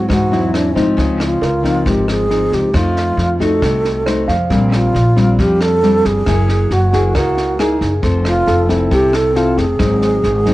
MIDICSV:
0, 0, Header, 1, 6, 480
1, 0, Start_track
1, 0, Tempo, 441176
1, 1061, Time_signature, 4, 2, 24, 8
1, 11466, End_track
2, 0, Start_track
2, 0, Title_t, "Grand piano"
2, 0, Program_c, 0, 0
2, 0, Control_c, 0, 64, 127
2, 0, Note_on_c, 0, 68, 42
2, 411, Note_off_c, 0, 68, 0
2, 1074, Control_c, 0, 64, 0
2, 1242, Control_c, 0, 64, 127
2, 1542, Note_on_c, 0, 70, 41
2, 2810, Note_off_c, 0, 70, 0
2, 2991, Control_c, 0, 64, 0
2, 3214, Control_c, 0, 64, 127
2, 4418, Note_on_c, 0, 72, 41
2, 4654, Note_on_c, 0, 77, 46
2, 4910, Control_c, 0, 64, 0
2, 5075, Control_c, 0, 64, 127
2, 5094, Note_off_c, 0, 72, 0
2, 5102, Note_off_c, 0, 77, 0
2, 6832, Control_c, 0, 64, 0
2, 7020, Control_c, 0, 64, 127
2, 7778, Note_on_c, 0, 70, 48
2, 8750, Control_c, 0, 64, 0
2, 8935, Note_off_c, 0, 70, 0
2, 8943, Control_c, 0, 64, 127
2, 9218, Note_on_c, 0, 69, 50
2, 10489, Note_off_c, 0, 69, 0
2, 10674, Control_c, 0, 64, 0
2, 11466, End_track
3, 0, Start_track
3, 0, Title_t, "Alto flute"
3, 0, Program_c, 1, 73
3, 120, Note_on_c, 1, 66, 82
3, 557, Note_off_c, 1, 66, 0
3, 608, Note_on_c, 1, 62, 73
3, 930, Note_off_c, 1, 62, 0
3, 1324, Note_on_c, 1, 65, 75
3, 2041, Note_on_c, 1, 67, 83
3, 2058, Note_off_c, 1, 65, 0
3, 2270, Note_off_c, 1, 67, 0
3, 2290, Note_on_c, 1, 68, 87
3, 2765, Note_on_c, 1, 67, 79
3, 2782, Note_off_c, 1, 68, 0
3, 2993, Note_on_c, 1, 65, 89
3, 3010, Note_off_c, 1, 67, 0
3, 3710, Note_on_c, 1, 69, 91
3, 3726, Note_off_c, 1, 65, 0
3, 4664, Note_off_c, 1, 69, 0
3, 5169, Note_on_c, 1, 65, 82
3, 5872, Note_on_c, 1, 67, 93
3, 5889, Note_off_c, 1, 65, 0
3, 6102, Note_on_c, 1, 69, 104
3, 6119, Note_off_c, 1, 67, 0
3, 6595, Note_on_c, 1, 68, 94
3, 6611, Note_off_c, 1, 69, 0
3, 7319, Note_on_c, 1, 66, 90
3, 7335, Note_off_c, 1, 68, 0
3, 7789, Note_off_c, 1, 66, 0
3, 7797, Note_on_c, 1, 66, 86
3, 8282, Note_on_c, 1, 63, 73
3, 8298, Note_off_c, 1, 66, 0
3, 8630, Note_off_c, 1, 63, 0
3, 8993, Note_on_c, 1, 65, 98
3, 9433, Note_off_c, 1, 65, 0
3, 9714, Note_on_c, 1, 67, 98
3, 9955, Note_on_c, 1, 69, 93
3, 9971, Note_off_c, 1, 67, 0
3, 10187, Note_on_c, 1, 65, 85
3, 10204, Note_off_c, 1, 69, 0
3, 10425, Note_on_c, 1, 68, 97
3, 10441, Note_off_c, 1, 65, 0
3, 11466, Note_off_c, 1, 68, 0
3, 11466, End_track
4, 0, Start_track
4, 0, Title_t, "Nylon-string guitar"
4, 0, Program_c, 2, 24
4, 92, Note_on_c, 2, 44, 55
4, 337, Note_on_c, 2, 54, 63
4, 343, Note_on_c, 2, 60, 54
4, 343, Note_on_c, 2, 64, 60
4, 781, Note_off_c, 2, 54, 0
4, 782, Note_off_c, 2, 60, 0
4, 783, Note_off_c, 2, 64, 0
4, 815, Note_on_c, 2, 53, 62
4, 819, Note_on_c, 2, 60, 61
4, 822, Note_on_c, 2, 63, 62
4, 1031, Note_off_c, 2, 44, 0
4, 1051, Note_on_c, 2, 49, 56
4, 1499, Note_off_c, 2, 53, 0
4, 1500, Note_off_c, 2, 60, 0
4, 1502, Note_off_c, 2, 63, 0
4, 1770, Note_on_c, 2, 53, 54
4, 1775, Note_on_c, 2, 60, 60
4, 1783, Note_on_c, 2, 63, 60
4, 1991, Note_off_c, 2, 49, 0
4, 2016, Note_on_c, 2, 44, 53
4, 2456, Note_off_c, 2, 53, 0
4, 2459, Note_off_c, 2, 60, 0
4, 2461, Note_off_c, 2, 63, 0
4, 2497, Note_on_c, 2, 53, 50
4, 2505, Note_on_c, 2, 60, 50
4, 2507, Note_on_c, 2, 63, 53
4, 2940, Note_off_c, 2, 53, 0
4, 2942, Note_off_c, 2, 60, 0
4, 2944, Note_off_c, 2, 63, 0
4, 2953, Note_off_c, 2, 44, 0
4, 2976, Note_on_c, 2, 53, 53
4, 2981, Note_on_c, 2, 57, 51
4, 2987, Note_on_c, 2, 63, 50
4, 3659, Note_off_c, 2, 57, 0
4, 3661, Note_off_c, 2, 63, 0
4, 3696, Note_on_c, 2, 57, 58
4, 3705, Note_on_c, 2, 63, 56
4, 3708, Note_on_c, 2, 66, 68
4, 3914, Note_off_c, 2, 53, 0
4, 3941, Note_on_c, 2, 48, 54
4, 4379, Note_off_c, 2, 57, 0
4, 4381, Note_off_c, 2, 63, 0
4, 4385, Note_off_c, 2, 66, 0
4, 4425, Note_on_c, 2, 57, 51
4, 4430, Note_on_c, 2, 63, 54
4, 4434, Note_on_c, 2, 66, 59
4, 4731, Note_off_c, 2, 57, 0
4, 4732, Note_off_c, 2, 63, 0
4, 4735, Note_off_c, 2, 66, 0
4, 4875, Note_off_c, 2, 48, 0
4, 4898, Note_on_c, 2, 55, 53
4, 4899, Note_on_c, 2, 46, 53
4, 4904, Note_on_c, 2, 60, 52
4, 4910, Note_on_c, 2, 62, 53
4, 5374, Note_off_c, 2, 55, 0
4, 5378, Note_off_c, 2, 60, 0
4, 5380, Note_off_c, 2, 62, 0
4, 5615, Note_on_c, 2, 55, 54
4, 5621, Note_on_c, 2, 60, 55
4, 5622, Note_on_c, 2, 62, 61
4, 5834, Note_off_c, 2, 46, 0
4, 5864, Note_on_c, 2, 53, 50
4, 6299, Note_off_c, 2, 55, 0
4, 6300, Note_off_c, 2, 60, 0
4, 6301, Note_off_c, 2, 62, 0
4, 6341, Note_on_c, 2, 55, 54
4, 6344, Note_on_c, 2, 60, 48
4, 6348, Note_on_c, 2, 62, 54
4, 6781, Note_off_c, 2, 55, 0
4, 6782, Note_off_c, 2, 60, 0
4, 6783, Note_off_c, 2, 62, 0
4, 6797, Note_off_c, 2, 53, 0
4, 6821, Note_on_c, 2, 54, 52
4, 6824, Note_on_c, 2, 58, 57
4, 6826, Note_on_c, 2, 64, 53
4, 6831, Note_on_c, 2, 68, 59
4, 7297, Note_off_c, 2, 58, 0
4, 7300, Note_off_c, 2, 64, 0
4, 7301, Note_off_c, 2, 68, 0
4, 7540, Note_on_c, 2, 58, 58
4, 7546, Note_on_c, 2, 64, 56
4, 7548, Note_on_c, 2, 68, 64
4, 7756, Note_off_c, 2, 54, 0
4, 7780, Note_on_c, 2, 49, 54
4, 8221, Note_off_c, 2, 58, 0
4, 8222, Note_off_c, 2, 64, 0
4, 8225, Note_off_c, 2, 68, 0
4, 8252, Note_on_c, 2, 58, 49
4, 8258, Note_on_c, 2, 64, 46
4, 8263, Note_on_c, 2, 68, 54
4, 8565, Note_off_c, 2, 58, 0
4, 8566, Note_off_c, 2, 64, 0
4, 8570, Note_off_c, 2, 68, 0
4, 8716, Note_off_c, 2, 49, 0
4, 8732, Note_on_c, 2, 53, 52
4, 8740, Note_on_c, 2, 60, 50
4, 8742, Note_on_c, 2, 69, 55
4, 9419, Note_off_c, 2, 60, 0
4, 9422, Note_off_c, 2, 69, 0
4, 9448, Note_on_c, 2, 60, 59
4, 9453, Note_on_c, 2, 64, 60
4, 9460, Note_on_c, 2, 69, 64
4, 9672, Note_off_c, 2, 53, 0
4, 9693, Note_on_c, 2, 48, 52
4, 10135, Note_off_c, 2, 60, 0
4, 10138, Note_off_c, 2, 64, 0
4, 10141, Note_off_c, 2, 69, 0
4, 10170, Note_on_c, 2, 60, 52
4, 10178, Note_on_c, 2, 64, 51
4, 10182, Note_on_c, 2, 69, 54
4, 10484, Note_off_c, 2, 60, 0
4, 10488, Note_off_c, 2, 64, 0
4, 10489, Note_off_c, 2, 69, 0
4, 10632, Note_off_c, 2, 48, 0
4, 10655, Note_on_c, 2, 44, 52
4, 10658, Note_on_c, 2, 54, 47
4, 10665, Note_on_c, 2, 60, 51
4, 10665, Note_on_c, 2, 63, 56
4, 11136, Note_off_c, 2, 54, 0
4, 11137, Note_off_c, 2, 60, 0
4, 11139, Note_off_c, 2, 63, 0
4, 11377, Note_on_c, 2, 54, 54
4, 11384, Note_on_c, 2, 60, 57
4, 11391, Note_on_c, 2, 63, 59
4, 11466, Note_off_c, 2, 44, 0
4, 11466, Note_off_c, 2, 54, 0
4, 11466, Note_off_c, 2, 60, 0
4, 11466, Note_off_c, 2, 63, 0
4, 11466, End_track
5, 0, Start_track
5, 0, Title_t, "Upright bass"
5, 0, Program_c, 3, 32
5, 106, Note_on_c, 3, 40, 85
5, 779, Note_off_c, 3, 40, 0
5, 827, Note_on_c, 3, 44, 74
5, 1047, Note_off_c, 3, 44, 0
5, 1063, Note_on_c, 3, 37, 88
5, 1508, Note_off_c, 3, 37, 0
5, 1536, Note_on_c, 3, 37, 87
5, 1984, Note_off_c, 3, 37, 0
5, 2024, Note_on_c, 3, 32, 82
5, 2697, Note_off_c, 3, 32, 0
5, 2745, Note_on_c, 3, 37, 78
5, 2965, Note_off_c, 3, 37, 0
5, 2984, Note_on_c, 3, 41, 90
5, 3427, Note_off_c, 3, 41, 0
5, 3453, Note_on_c, 3, 41, 90
5, 3902, Note_off_c, 3, 41, 0
5, 3943, Note_on_c, 3, 36, 83
5, 4617, Note_off_c, 3, 36, 0
5, 4662, Note_on_c, 3, 41, 76
5, 4883, Note_off_c, 3, 41, 0
5, 4905, Note_on_c, 3, 34, 84
5, 5348, Note_off_c, 3, 34, 0
5, 5380, Note_on_c, 3, 34, 90
5, 5825, Note_off_c, 3, 34, 0
5, 5862, Note_on_c, 3, 41, 85
5, 6536, Note_off_c, 3, 41, 0
5, 6580, Note_on_c, 3, 31, 76
5, 6802, Note_off_c, 3, 31, 0
5, 6824, Note_on_c, 3, 30, 88
5, 7268, Note_off_c, 3, 30, 0
5, 7296, Note_on_c, 3, 30, 97
5, 7744, Note_off_c, 3, 30, 0
5, 7781, Note_on_c, 3, 37, 83
5, 8456, Note_off_c, 3, 37, 0
5, 8498, Note_on_c, 3, 30, 81
5, 8721, Note_off_c, 3, 30, 0
5, 8737, Note_on_c, 3, 29, 86
5, 9184, Note_off_c, 3, 29, 0
5, 9219, Note_on_c, 3, 29, 93
5, 9665, Note_off_c, 3, 29, 0
5, 9699, Note_on_c, 3, 36, 84
5, 10375, Note_off_c, 3, 36, 0
5, 10416, Note_on_c, 3, 29, 81
5, 10641, Note_off_c, 3, 29, 0
5, 10660, Note_on_c, 3, 32, 92
5, 11106, Note_off_c, 3, 32, 0
5, 11138, Note_on_c, 3, 32, 92
5, 11466, Note_off_c, 3, 32, 0
5, 11466, End_track
6, 0, Start_track
6, 0, Title_t, "Drums"
6, 105, Note_on_c, 9, 36, 52
6, 108, Note_on_c, 9, 37, 53
6, 108, Note_on_c, 9, 38, 22
6, 214, Note_off_c, 9, 36, 0
6, 217, Note_off_c, 9, 37, 0
6, 217, Note_off_c, 9, 38, 0
6, 348, Note_on_c, 9, 38, 22
6, 457, Note_off_c, 9, 38, 0
6, 586, Note_on_c, 9, 37, 56
6, 586, Note_on_c, 9, 38, 22
6, 695, Note_off_c, 9, 37, 0
6, 695, Note_off_c, 9, 38, 0
6, 824, Note_on_c, 9, 36, 23
6, 827, Note_on_c, 9, 38, 22
6, 933, Note_off_c, 9, 36, 0
6, 936, Note_off_c, 9, 38, 0
6, 1065, Note_on_c, 9, 36, 54
6, 1066, Note_on_c, 9, 38, 24
6, 1174, Note_off_c, 9, 36, 0
6, 1175, Note_off_c, 9, 38, 0
6, 1306, Note_on_c, 9, 37, 55
6, 1306, Note_on_c, 9, 38, 24
6, 1415, Note_off_c, 9, 37, 0
6, 1415, Note_off_c, 9, 38, 0
6, 1546, Note_on_c, 9, 38, 24
6, 1654, Note_off_c, 9, 38, 0
6, 1783, Note_on_c, 9, 36, 23
6, 1787, Note_on_c, 9, 38, 22
6, 1892, Note_off_c, 9, 36, 0
6, 1895, Note_off_c, 9, 38, 0
6, 2022, Note_on_c, 9, 36, 55
6, 2022, Note_on_c, 9, 38, 24
6, 2131, Note_off_c, 9, 36, 0
6, 2131, Note_off_c, 9, 38, 0
6, 2265, Note_on_c, 9, 37, 55
6, 2265, Note_on_c, 9, 38, 23
6, 2374, Note_off_c, 9, 37, 0
6, 2374, Note_off_c, 9, 38, 0
6, 2506, Note_on_c, 9, 38, 21
6, 2614, Note_off_c, 9, 38, 0
6, 2743, Note_on_c, 9, 36, 23
6, 2744, Note_on_c, 9, 38, 22
6, 2852, Note_off_c, 9, 36, 0
6, 2853, Note_off_c, 9, 38, 0
6, 2983, Note_on_c, 9, 36, 61
6, 2983, Note_on_c, 9, 37, 57
6, 2983, Note_on_c, 9, 38, 23
6, 3091, Note_off_c, 9, 36, 0
6, 3092, Note_off_c, 9, 37, 0
6, 3092, Note_off_c, 9, 38, 0
6, 3226, Note_on_c, 9, 38, 23
6, 3335, Note_off_c, 9, 38, 0
6, 3464, Note_on_c, 9, 38, 22
6, 3573, Note_off_c, 9, 38, 0
6, 3702, Note_on_c, 9, 36, 23
6, 3706, Note_on_c, 9, 38, 23
6, 3811, Note_off_c, 9, 36, 0
6, 3815, Note_off_c, 9, 38, 0
6, 3942, Note_on_c, 9, 36, 57
6, 3943, Note_on_c, 9, 37, 59
6, 3943, Note_on_c, 9, 38, 23
6, 4051, Note_off_c, 9, 36, 0
6, 4051, Note_off_c, 9, 37, 0
6, 4051, Note_off_c, 9, 38, 0
6, 4185, Note_on_c, 9, 38, 22
6, 4294, Note_off_c, 9, 38, 0
6, 4424, Note_on_c, 9, 37, 55
6, 4424, Note_on_c, 9, 38, 23
6, 4533, Note_off_c, 9, 37, 0
6, 4533, Note_off_c, 9, 38, 0
6, 4662, Note_on_c, 9, 36, 22
6, 4662, Note_on_c, 9, 38, 22
6, 4771, Note_off_c, 9, 36, 0
6, 4771, Note_off_c, 9, 38, 0
6, 4903, Note_on_c, 9, 36, 62
6, 4904, Note_on_c, 9, 38, 25
6, 5012, Note_off_c, 9, 36, 0
6, 5013, Note_off_c, 9, 38, 0
6, 5141, Note_on_c, 9, 37, 53
6, 5141, Note_on_c, 9, 38, 23
6, 5250, Note_off_c, 9, 37, 0
6, 5250, Note_off_c, 9, 38, 0
6, 5385, Note_on_c, 9, 38, 22
6, 5494, Note_off_c, 9, 38, 0
6, 5622, Note_on_c, 9, 36, 21
6, 5622, Note_on_c, 9, 38, 22
6, 5730, Note_off_c, 9, 38, 0
6, 5731, Note_off_c, 9, 36, 0
6, 5861, Note_on_c, 9, 38, 22
6, 5862, Note_on_c, 9, 36, 57
6, 5970, Note_off_c, 9, 38, 0
6, 5971, Note_off_c, 9, 36, 0
6, 6100, Note_on_c, 9, 37, 50
6, 6100, Note_on_c, 9, 38, 21
6, 6209, Note_off_c, 9, 37, 0
6, 6209, Note_off_c, 9, 38, 0
6, 6341, Note_on_c, 9, 38, 21
6, 6450, Note_off_c, 9, 38, 0
6, 6579, Note_on_c, 9, 38, 22
6, 6580, Note_on_c, 9, 36, 21
6, 6688, Note_off_c, 9, 38, 0
6, 6689, Note_off_c, 9, 36, 0
6, 6815, Note_on_c, 9, 37, 61
6, 6815, Note_on_c, 9, 38, 25
6, 6821, Note_on_c, 9, 36, 57
6, 6924, Note_off_c, 9, 37, 0
6, 6924, Note_off_c, 9, 38, 0
6, 6929, Note_off_c, 9, 36, 0
6, 7057, Note_on_c, 9, 38, 24
6, 7166, Note_off_c, 9, 38, 0
6, 7295, Note_on_c, 9, 38, 23
6, 7404, Note_off_c, 9, 38, 0
6, 7540, Note_on_c, 9, 36, 23
6, 7540, Note_on_c, 9, 38, 23
6, 7648, Note_off_c, 9, 36, 0
6, 7649, Note_off_c, 9, 38, 0
6, 7778, Note_on_c, 9, 37, 55
6, 7778, Note_on_c, 9, 38, 24
6, 7780, Note_on_c, 9, 36, 57
6, 7887, Note_off_c, 9, 37, 0
6, 7887, Note_off_c, 9, 38, 0
6, 7889, Note_off_c, 9, 36, 0
6, 8018, Note_on_c, 9, 38, 24
6, 8127, Note_off_c, 9, 38, 0
6, 8259, Note_on_c, 9, 37, 56
6, 8259, Note_on_c, 9, 38, 23
6, 8367, Note_off_c, 9, 37, 0
6, 8367, Note_off_c, 9, 38, 0
6, 8497, Note_on_c, 9, 38, 23
6, 8498, Note_on_c, 9, 36, 23
6, 8606, Note_off_c, 9, 38, 0
6, 8607, Note_off_c, 9, 36, 0
6, 8736, Note_on_c, 9, 38, 24
6, 8738, Note_on_c, 9, 36, 59
6, 8844, Note_off_c, 9, 38, 0
6, 8846, Note_off_c, 9, 36, 0
6, 8977, Note_on_c, 9, 37, 61
6, 8977, Note_on_c, 9, 38, 24
6, 9086, Note_off_c, 9, 37, 0
6, 9086, Note_off_c, 9, 38, 0
6, 9214, Note_on_c, 9, 38, 22
6, 9323, Note_off_c, 9, 38, 0
6, 9456, Note_on_c, 9, 38, 23
6, 9457, Note_on_c, 9, 36, 23
6, 9565, Note_off_c, 9, 36, 0
6, 9565, Note_off_c, 9, 38, 0
6, 9695, Note_on_c, 9, 38, 23
6, 9697, Note_on_c, 9, 36, 59
6, 9804, Note_off_c, 9, 38, 0
6, 9806, Note_off_c, 9, 36, 0
6, 9936, Note_on_c, 9, 37, 54
6, 9936, Note_on_c, 9, 38, 23
6, 10045, Note_off_c, 9, 37, 0
6, 10045, Note_off_c, 9, 38, 0
6, 10177, Note_on_c, 9, 38, 23
6, 10285, Note_off_c, 9, 38, 0
6, 10417, Note_on_c, 9, 38, 22
6, 10418, Note_on_c, 9, 36, 21
6, 10525, Note_off_c, 9, 38, 0
6, 10527, Note_off_c, 9, 36, 0
6, 10654, Note_on_c, 9, 37, 57
6, 10654, Note_on_c, 9, 38, 24
6, 10659, Note_on_c, 9, 36, 59
6, 10763, Note_off_c, 9, 37, 0
6, 10763, Note_off_c, 9, 38, 0
6, 10767, Note_off_c, 9, 36, 0
6, 10898, Note_on_c, 9, 38, 25
6, 11007, Note_off_c, 9, 38, 0
6, 11137, Note_on_c, 9, 38, 24
6, 11246, Note_off_c, 9, 38, 0
6, 11377, Note_on_c, 9, 38, 22
6, 11380, Note_on_c, 9, 36, 23
6, 11466, Note_off_c, 9, 36, 0
6, 11466, Note_off_c, 9, 38, 0
6, 11466, End_track
0, 0, End_of_file